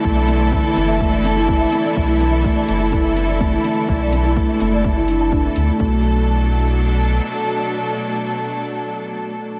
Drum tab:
HH |-x-x-x-x|-x-x-x-x|-x-x-x-x|--------|
BD |o-o-o-o-|o-o-o-o-|o-o-o-o-|o-------|

HH |--------|
BD |--------|